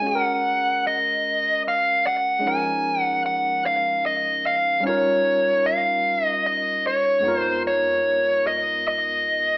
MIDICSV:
0, 0, Header, 1, 3, 480
1, 0, Start_track
1, 0, Key_signature, -5, "major"
1, 0, Tempo, 800000
1, 22, Time_signature, 6, 3, 24, 8
1, 5746, End_track
2, 0, Start_track
2, 0, Title_t, "Lead electric guitar"
2, 0, Program_c, 0, 29
2, 41, Note_on_c, 0, 78, 107
2, 520, Note_off_c, 0, 78, 0
2, 522, Note_on_c, 0, 75, 101
2, 968, Note_off_c, 0, 75, 0
2, 1008, Note_on_c, 0, 77, 92
2, 1238, Note_off_c, 0, 77, 0
2, 1240, Note_on_c, 0, 78, 79
2, 1478, Note_off_c, 0, 78, 0
2, 1484, Note_on_c, 0, 80, 110
2, 1808, Note_off_c, 0, 80, 0
2, 1808, Note_on_c, 0, 78, 110
2, 1929, Note_off_c, 0, 78, 0
2, 1955, Note_on_c, 0, 78, 92
2, 2172, Note_off_c, 0, 78, 0
2, 2198, Note_on_c, 0, 77, 93
2, 2434, Note_off_c, 0, 77, 0
2, 2437, Note_on_c, 0, 75, 73
2, 2676, Note_off_c, 0, 75, 0
2, 2678, Note_on_c, 0, 77, 80
2, 2894, Note_off_c, 0, 77, 0
2, 2920, Note_on_c, 0, 73, 95
2, 3397, Note_on_c, 0, 77, 94
2, 3405, Note_off_c, 0, 73, 0
2, 3751, Note_off_c, 0, 77, 0
2, 3751, Note_on_c, 0, 75, 94
2, 3879, Note_off_c, 0, 75, 0
2, 3879, Note_on_c, 0, 75, 79
2, 4117, Note_off_c, 0, 75, 0
2, 4122, Note_on_c, 0, 73, 93
2, 4428, Note_off_c, 0, 73, 0
2, 4428, Note_on_c, 0, 72, 93
2, 4568, Note_off_c, 0, 72, 0
2, 4603, Note_on_c, 0, 73, 76
2, 5080, Note_off_c, 0, 73, 0
2, 5083, Note_on_c, 0, 75, 89
2, 5319, Note_off_c, 0, 75, 0
2, 5326, Note_on_c, 0, 75, 86
2, 5746, Note_off_c, 0, 75, 0
2, 5746, End_track
3, 0, Start_track
3, 0, Title_t, "Tine electric piano"
3, 0, Program_c, 1, 4
3, 0, Control_c, 1, 64, 127
3, 1, Note_on_c, 1, 56, 61
3, 12, Note_on_c, 1, 61, 53
3, 30, Control_c, 1, 64, 0
3, 38, Note_on_c, 1, 66, 58
3, 49, Note_on_c, 1, 68, 56
3, 74, Note_off_c, 1, 68, 0
3, 92, Note_on_c, 1, 70, 68
3, 133, Control_c, 1, 64, 127
3, 1427, Note_off_c, 1, 56, 0
3, 1433, Note_off_c, 1, 61, 0
3, 1435, Note_on_c, 1, 56, 64
3, 1446, Note_off_c, 1, 66, 0
3, 1447, Note_on_c, 1, 61, 55
3, 1461, Note_on_c, 1, 63, 58
3, 1470, Control_c, 1, 64, 0
3, 1473, Note_off_c, 1, 70, 0
3, 1473, Note_on_c, 1, 53, 62
3, 1485, Note_on_c, 1, 70, 70
3, 1584, Control_c, 1, 64, 127
3, 2864, Note_off_c, 1, 56, 0
3, 2870, Note_off_c, 1, 61, 0
3, 2877, Note_off_c, 1, 63, 0
3, 2882, Note_on_c, 1, 55, 67
3, 2883, Note_off_c, 1, 53, 0
3, 2890, Note_off_c, 1, 70, 0
3, 2897, Note_on_c, 1, 61, 60
3, 2908, Note_on_c, 1, 63, 59
3, 2910, Control_c, 1, 64, 0
3, 2920, Note_on_c, 1, 65, 59
3, 2935, Note_on_c, 1, 70, 70
3, 3026, Control_c, 1, 64, 127
3, 4308, Note_off_c, 1, 55, 0
3, 4315, Note_off_c, 1, 61, 0
3, 4318, Note_on_c, 1, 41, 67
3, 4321, Note_off_c, 1, 63, 0
3, 4325, Note_on_c, 1, 56, 58
3, 4327, Note_off_c, 1, 65, 0
3, 4334, Note_off_c, 1, 70, 0
3, 4336, Note_on_c, 1, 59, 63
3, 4348, Note_on_c, 1, 63, 53
3, 4351, Control_c, 1, 64, 0
3, 4359, Note_on_c, 1, 65, 59
3, 4369, Note_on_c, 1, 70, 74
3, 4462, Control_c, 1, 64, 127
3, 5746, Note_off_c, 1, 41, 0
3, 5746, Note_off_c, 1, 56, 0
3, 5746, Note_off_c, 1, 59, 0
3, 5746, Note_off_c, 1, 63, 0
3, 5746, Note_off_c, 1, 65, 0
3, 5746, Note_off_c, 1, 70, 0
3, 5746, End_track
0, 0, End_of_file